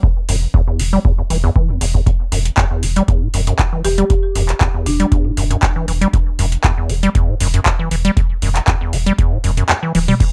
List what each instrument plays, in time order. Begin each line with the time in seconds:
0.03 acid bass E2, kick
0.29 sub bass E1, acid bass F#2, open hi-hat
0.54 acid bass E2, kick
0.68 acid bass E2
0.79 sub bass E1, acid bass E3, open hi-hat
0.93 acid bass G3
1.05 acid bass E2, kick
1.18 acid bass E2
1.30 sub bass E1, acid bass E3, open hi-hat
1.44 acid bass E2
1.56 acid bass E3, kick
1.69 acid bass E2
1.81 sub bass E1, acid bass E2, open hi-hat
1.94 acid bass E2, kick
2.06 acid bass E2, kick, closed hi-hat
2.32 sub bass E1, acid bass F#2, open hi-hat
2.46 closed hi-hat
2.57 acid bass E2, kick, clap, closed hi-hat
2.71 acid bass E2
2.83 sub bass E1, acid bass E3, open hi-hat
2.96 acid bass G3, closed hi-hat
3.08 acid bass E2, kick, closed hi-hat
3.22 acid bass A2
3.34 sub bass E1, acid bass F#2, open hi-hat
3.47 acid bass F#2, closed hi-hat
3.59 acid bass E2, kick, clap, closed hi-hat
3.73 acid bass E3
3.85 sub bass E1, acid bass E3, marimba G4, open hi-hat
3.98 acid bass G3, marimba G4, closed hi-hat
4.10 acid bass E2, kick, closed hi-hat
4.35 sub bass E1, acid bass F#2, open hi-hat
4.49 clap, closed hi-hat
4.61 acid bass E2, kick, clap, closed hi-hat
4.74 acid bass E2
4.86 sub bass E1, acid bass E3, marimba D4, open hi-hat
5.00 acid bass G3, closed hi-hat
5.12 acid bass E2, kick, closed hi-hat
5.25 acid bass A2
5.37 sub bass E1, acid bass F#2, open hi-hat
5.50 acid bass F#2, closed hi-hat
5.62 acid bass E2, kick, clap, closed hi-hat
5.76 acid bass E3
5.88 sub bass E1, acid bass E3, open hi-hat
6.01 acid bass G3, closed hi-hat
6.13 acid bass E2, kick, closed hi-hat
6.39 sub bass E1, acid bass F#2, open hi-hat
6.52 closed hi-hat
6.64 acid bass E2, kick, clap, closed hi-hat
6.78 acid bass E2
6.90 sub bass E1, acid bass E3, open hi-hat
7.03 acid bass G3, closed hi-hat
7.15 acid bass E2, kick, closed hi-hat
7.29 acid bass A2
7.40 sub bass E1, acid bass F#2, open hi-hat
7.54 acid bass F#2, closed hi-hat
7.66 acid bass E2, kick, clap, closed hi-hat
7.79 acid bass E3
7.91 sub bass E1, acid bass E3, open hi-hat
8.05 acid bass G3, closed hi-hat
8.17 acid bass E2, kick, closed hi-hat
8.42 sub bass E1, acid bass F#2, open hi-hat
8.56 clap, closed hi-hat
8.68 acid bass E2, kick, clap, closed hi-hat
8.81 acid bass E2
8.93 sub bass E1, acid bass E3, open hi-hat
9.06 acid bass G3, closed hi-hat
9.18 acid bass E2, kick, closed hi-hat
9.32 acid bass A2
9.44 sub bass E1, acid bass F#2, open hi-hat
9.57 acid bass F#2, closed hi-hat
9.69 acid bass E2, clap, closed hi-hat
9.83 acid bass E3
9.95 sub bass D1, acid bass E3, open hi-hat, high tom
10.08 acid bass G3, open hi-hat, mid tom
10.20 acid bass E2, kick, closed hi-hat, crash